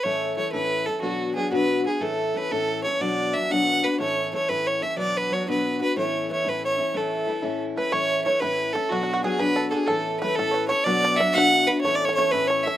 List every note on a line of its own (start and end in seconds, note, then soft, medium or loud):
0.03 0.38 A2 medium
0.03 0.36 E3 medium
0.03 0.37 A3 medium
0.03 0.37 C#4 medium
0.03 0.38 A4 medium
0.03 0.36 C#5 medium
0.37 0.53 E3 medium
0.37 0.52 A3 medium
0.37 0.52 C#4 medium
0.37 0.52 A4 soft
0.37 0.52 C#5 medium
0.52 0.87 A2 soft
0.52 0.87 E3 soft
0.52 0.87 A3 medium
0.52 0.86 C#4 medium
0.52 0.85 A4 medium
0.52 0.87 B4 medium
0.86 1.02 A3 soft
0.86 1.03 C#4 soft
0.86 1.01 A4 medium
0.86 1.03 A4 soft
1.01 1.36 B2 medium
1.01 1.34 F#3 medium
1.01 1.35 B3 medium
1.01 1.36 D4 medium
1.01 1.33 F#4 medium
1.01 1.36 F#4 medium
1.35 1.51 F#3 soft
1.35 1.51 B3 medium
1.35 1.50 D4 soft
1.35 1.50 F#4 medium
1.35 1.51 G#4 medium
1.51 1.86 B2 soft
1.51 1.86 F#3 soft
1.51 1.85 B3 soft
1.51 1.85 D4 medium
1.51 1.83 F#4 medium
1.51 1.84 B4 medium
1.84 2.01 B3 soft
1.84 2.01 D4 soft
1.84 2.01 F#4 soft
1.84 2.03 G#4 medium
2.00 2.34 A2 medium
2.00 2.33 E3 medium
2.00 2.34 A3 medium
2.00 2.35 C#4 medium
2.00 2.38 A4 medium
2.00 2.35 A4 medium
2.35 2.51 E3 medium
2.35 2.50 A3 medium
2.35 2.50 C#4 medium
2.35 2.49 A4 medium
2.35 2.53 B4 medium
2.50 2.85 A2 medium
2.50 2.85 E3 medium
2.50 2.85 A3 medium
2.50 2.84 C#4 medium
2.50 2.84 A4 medium
2.50 2.83 A4 loud
2.84 3.00 A3 soft
2.84 3.01 C#4 soft
2.84 3.01 A4 soft
2.84 3.03 C#5 medium
3.00 3.34 B2 medium
3.00 3.34 F#3 medium
3.00 3.34 B3 medium
3.00 3.34 D4 medium
3.00 3.34 F#4 medium
3.00 3.35 D5 medium
3.33 3.50 F#3 soft
3.33 3.50 B3 soft
3.33 3.50 D4 medium
3.33 3.49 F#4 medium
3.33 3.53 E5 medium
3.50 3.84 B2 soft
3.50 3.84 F#3 medium
3.50 3.84 B3 soft
3.50 3.83 D4 medium
3.50 3.82 F#4 medium
3.50 3.85 F#5 loud
3.83 3.99 B3 soft
3.83 3.99 D4 soft
3.83 3.99 F#4 soft
3.83 3.99 B4 medium
3.99 4.32 A2 medium
3.99 4.32 E3 medium
3.99 4.32 A3 medium
3.99 4.33 C#4 medium
3.99 4.33 A4 medium
3.99 4.30 C#5 medium
4.33 4.49 E3 medium
4.33 4.48 A3 medium
4.33 4.48 C#4 medium
4.33 4.48 A4 medium
4.33 4.50 C#5 medium
4.48 4.83 A2 soft
4.48 4.83 E3 soft
4.48 4.82 A3 medium
4.48 4.81 C#4 medium
4.48 4.80 A4 soft
4.48 4.68 B4 medium
4.67 4.84 C#5 medium
4.81 4.97 A3 soft
4.81 4.98 C#4 soft
4.81 4.97 A4 medium
4.81 4.98 E5 medium
4.96 5.30 B2 medium
4.96 5.29 F#3 medium
4.96 5.30 B3 medium
4.96 5.31 D4 medium
4.96 5.31 F#4 medium
4.96 5.19 D5 medium
5.17 5.34 B4 medium
5.30 5.47 F#3 medium
5.30 5.47 B3 medium
5.30 5.46 D4 medium
5.30 5.46 F#4 medium
5.30 5.48 C#5 medium
5.47 5.81 B2 soft
5.47 5.81 F#3 medium
5.47 5.81 B3 medium
5.47 5.80 D4 medium
5.47 5.78 F#4 medium
5.47 5.79 B4 medium
5.80 5.97 B3 soft
5.80 5.97 D4 soft
5.80 5.96 F#4 soft
5.80 5.96 B4 medium
5.96 6.29 A2 medium
5.96 6.29 E3 medium
5.96 6.30 A3 medium
5.96 6.30 C#4 medium
5.96 6.31 E4 medium
5.96 6.28 C#5 medium
6.29 6.45 E3 soft
6.29 6.45 A3 soft
6.29 6.45 C#4 medium
6.29 6.43 E4 medium
6.29 6.50 C#5 medium
6.44 6.79 A2 soft
6.44 6.93 E3 soft
6.44 6.80 A3 medium
6.44 6.79 C#4 soft
6.44 6.77 E4 medium
6.49 6.64 B4 medium
6.65 6.98 C#5 medium
6.78 6.93 A3 soft
6.78 6.94 C#4 soft
6.78 6.94 E4 medium
6.94 7.27 A2 medium
6.94 7.26 E3 medium
6.94 7.26 A3 medium
6.94 7.27 C#4 medium
6.94 7.28 E4 medium
6.94 7.62 A4 medium
7.27 7.42 E3 medium
7.27 7.42 A3 medium
7.27 7.41 C#4 medium
7.27 7.41 E4 medium
7.42 7.77 A2 medium
7.42 7.77 E3 medium
7.42 7.76 A3 medium
7.42 7.76 C#4 medium
7.42 7.75 E4 medium
7.76 7.91 A3 soft
7.76 7.92 C#4 medium
7.76 7.92 E4 medium
7.76 7.92 B4 medium
7.76 7.94 B4 medium
7.92 8.26 A2 medium
7.92 8.24 E3 medium
7.92 8.25 A3 medium
7.92 8.25 C#4 medium
7.92 8.26 E4 medium
7.92 8.23 C#5 medium
7.92 8.24 C#5 medium
8.25 8.41 E3 medium
8.25 8.41 A3 medium
8.25 8.40 C#4 medium
8.25 8.40 E4 medium
8.25 8.41 C#5 medium
8.40 8.75 A2 medium
8.40 8.75 E3 soft
8.40 8.75 A3 medium
8.40 8.74 C#4 medium
8.40 8.72 E4 medium
8.40 8.74 B4 medium
8.40 8.73 B4 medium
8.72 8.90 A3 soft
8.72 8.91 C#4 soft
8.72 8.90 E4 soft
8.72 8.91 A4 medium
8.89 9.23 B2 medium
8.89 9.22 F#3 medium
8.89 9.23 B3 medium
8.89 9.24 D4 medium
8.89 9.23 F#4 medium
8.89 9.24 F#4 medium
8.89 9.02 F#4 medium
9.03 9.12 F#4 medium
9.14 9.23 F#4 medium
9.23 9.39 F#3 medium
9.23 9.39 B3 medium
9.23 9.38 D4 medium
9.23 9.38 F#4 medium
9.23 9.39 G#4 medium
9.23 9.40 G#4 medium
9.39 9.73 B2 medium
9.39 9.73 F#3 medium
9.39 9.73 B3 medium
9.39 9.72 D4 medium
9.39 9.71 F#4 medium
9.39 9.68 B4 loud
9.39 9.56 B4 medium
9.56 9.71 A4 medium
9.71 9.89 B3 soft
9.71 9.89 D4 soft
9.71 9.88 F#4 soft
9.71 9.88 G#4 medium
9.71 9.87 G#4 medium
9.71 9.73 A4 medium
9.87 10.21 A2 medium
9.87 10.21 E3 medium
9.87 10.22 A3 medium
9.87 10.22 C#4 medium
9.87 10.20 A4 medium
9.87 10.19 A4 medium
9.87 10.22 A4 medium
10.20 10.38 E3 medium
10.20 10.37 A3 medium
10.20 10.37 C#4 medium
10.20 10.37 B4 medium
10.25 10.36 A4 medium
10.36 10.71 A2 medium
10.36 10.71 E3 medium
10.36 10.70 A3 medium
10.36 10.70 C#4 medium
10.36 10.68 A4 loud
10.36 10.68 A4 medium
10.36 10.51 A4 medium
10.51 10.71 B4 medium
10.51 10.55 C#5 medium
10.68 10.86 A3 soft
10.68 10.86 C#4 soft
10.68 10.86 A4 medium
10.68 10.86 C#5 loud
10.68 10.85 C#5 medium
10.84 11.19 B2 medium
10.84 11.17 F#3 medium
10.84 11.18 B3 medium
10.84 11.19 D4 medium
10.84 11.19 F#4 medium
10.84 11.17 D5 loud
10.84 11.03 D5 medium
11.04 11.20 D5 medium
11.15 11.34 F#3 medium
11.15 11.34 B3 medium
11.15 11.34 E5 medium
11.15 11.18 F#5 medium
11.20 11.33 D4 medium
11.20 11.33 F#4 medium
11.20 11.35 E5 medium
11.32 11.69 B2 medium
11.32 11.69 F#3 soft
11.32 11.68 B3 soft
11.32 11.68 D4 medium
11.32 11.66 F#4 medium
11.32 11.68 F#5 loud
11.38 11.84 F#5 medium
11.67 11.85 B3 soft
11.67 11.85 D4 soft
11.67 11.84 F#4 medium
11.67 11.81 B4 medium
11.81 12.17 A2 medium
11.81 12.15 E3 medium
11.81 12.17 A3 medium
11.81 11.96 C#5 loud
11.81 11.95 C#5 medium
11.85 12.16 C#4 medium
11.85 12.18 A4 medium
11.95 12.06 D5 medium
12.05 12.14 C#5 loud
12.05 12.17 C#5 medium
12.15 12.32 E3 medium
12.15 12.32 A3 medium
12.15 12.32 C#4 medium
12.15 12.33 C#5 loud
12.15 12.33 C#5 medium
12.19 12.31 A4 medium
12.31 12.67 A2 medium
12.31 12.67 E3 medium
12.31 12.66 A3 soft
12.31 12.65 C#4 medium
12.31 12.65 A4 medium
12.31 12.49 B4 loud
12.31 12.50 B4 medium
12.47 12.64 C#5 medium
12.47 12.65 C#5 medium
12.63 12.77 C#4 soft
12.63 12.77 A4 medium
12.63 12.77 E5 medium
12.67 12.77 A3 soft
12.67 12.77 E5 medium